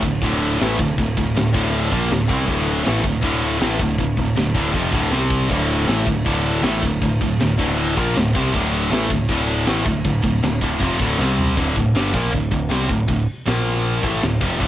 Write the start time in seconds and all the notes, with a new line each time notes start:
0.03 D1 D2 A2, kick, crash
0.22 D1 D2 A2 D3, kick, crash
0.41 crash
0.59 A1 A2 E3 A3, snare, crash
0.79 D1 D2 A2, kick, crash
0.98 D1 D2 A2, kick, crash
1.17 D1 D2 A2, kick, crash
1.35 D1 D2 A2, snare, crash
1.53 D1 D2 A2 D3, kick, crash
1.73 crash
1.90 A#1 A#2 F3 A#3, kick, crash
2.09 D1 D2 A2, snare, crash
2.27 C2 C3 G3 C4, kick, crash
2.46 D1 D2 A2 D3, kick, crash
2.66 crash
2.83 A2 E3 A3, snare, crash
2.87 A1
3.02 D1 D2 A2, kick, crash
3.21 D1 D2 A2 D3, kick, crash
3.42 crash
3.60 A1 A2 E3 A3, snare, crash
3.79 D1 D2 A2, kick, crash
3.98 D1 D2 A2, kick, crash
4.17 D1 D2 A2, kick, crash
4.36 D1 D2 A2, snare, crash
4.54 D1 D2 A2 D3, kick, crash
4.73 F1 F2 C3 F3, kick, crash
4.92 D1 D2 A2 D3, kick, crash
5.11 C2 C3 G3 C4, snare
5.31 kick
5.50 D1 D2 A2 D3, kick, crash
5.69 crash
5.87 A1 A2 E3 A3, snare, crash
6.07 D1 D2 A2, kick, crash
6.25 D1 D2 A2 D3, kick, crash
6.45 crash
6.62 A1 A2 E3 A3, snare, crash
6.82 D1 D2 A2, kick, crash
7.01 D1 D2 A2, kick, crash
7.21 D1 D2 A2, kick, crash
7.39 D1 D2 A2, snare, crash
7.58 D1 D2 A2 D3, kick, crash
7.78 crash
7.95 A#1 A#2 F3 A#3, kick, crash
8.15 D1 D2 A2, snare, crash
8.35 C2 C3 G3 C4, kick, crash
8.54 D1 D2 A2 D3, kick, crash
8.74 crash
8.91 A1 A2 E3 A3, snare, crash
9.09 D1 D2 A2, kick, crash
9.29 D1 D2 A2 D3, kick, crash
9.48 crash
9.66 A1 A2 E3 A3, snare, crash
9.85 D1 D2 A2, kick, crash
10.05 D1 D2 A2, kick, crash
10.23 D1 D2 A2, kick, crash
10.42 D1 D2 A2, snare, crash
10.61 D1 D2 A2 D3, kick, crash
10.80 F1 F2 C3 F3, kick, crash
10.99 D1 D2 A2 D3, kick, crash
11.19 C2 C3 G3 C4, snare
11.39 floor tom
11.57 D1 D2 A2 D3, kick, open hi-hat
11.76 D1 D2 A2, kick
11.94 G1 G2 D3 G3, snare, open hi-hat
12.13 A#1 A#2 F3 A#3, kick
12.32 D1 D2 A2, kick, open hi-hat
12.51 D1 D2 A2, kick
12.69 C2 C3 G3 C4, snare, open hi-hat
12.88 D1 D2 A2, kick
13.08 D1 D2 A2, kick, open hi-hat
13.47 A#1 A#2 F3 A#3, snare, open hi-hat
13.84 open hi-hat
14.03 A1 A2 E3 A3, kick
14.22 D1 D2 A2, snare, open hi-hat
14.40 F1 F2 C3 F3, kick
14.58 D1 D2 A2 D3, kick, open hi-hat